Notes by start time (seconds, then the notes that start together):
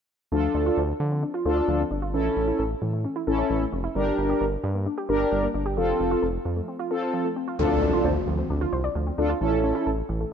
0.32 D2 F3 D4 F4 A4
0.54 D2 D4
0.66 F4
0.77 D2 C5
1.00 D3 F3
1.12 C4
1.23 D4
1.34 F4
1.45 D2 D4 F4 A4 C5
1.57 D5
1.68 D2 F3
1.80 C4
1.91 G1 D4
2.02 F4
2.13 A1 E3 C#4 E4 A4
2.36 A1 C#4
2.48 E4
2.59 A1 A4
2.82 A2 E3
2.93 A3
3.05 C#4
3.16 E4
3.27 A1 C#4 E4 A4
3.39 C#5
3.50 A1 E3
3.61 A3
3.73 F1 C#4
3.84 E4
3.95 G1 G3 D4 G4 A#4
4.18 G1 D4
4.29 G4
4.41 G1 A#4
4.64 G2 G3
4.75 A#3
4.86 D4
4.98 G4
5.09 G1 D4 G4 A#4
5.20 D5
5.32 G1 G3
5.43 A#3
5.54 G1 D4
5.66 G4
5.77 F1 F3 C4 F4 A4
6.00 F1 C4
6.11 F4
6.23 F1 A4
6.45 F2 F3
6.57 A3
6.68 C4
6.79 F4
6.91 C4 F4 A4
7.02 C5
7.14 F3
7.25 A3
7.36 C4
7.48 F4
7.59 D2 F3 D4 F4 A4, impact
7.82 D4
7.93 F4
8.05 D2 C5
8.27 D2 F3
8.39 C4
8.50 D2 D4
8.61 F4
8.73 C2 C5
8.84 D5
8.95 D2 F3
9.07 C4
9.18 D2 D4 F4 A4
9.29 F4
9.41 A1 E3 C#4 E4 A4
9.64 C#4
9.75 E4
9.86 A1 A4
10.09 A1 E3
10.20 A3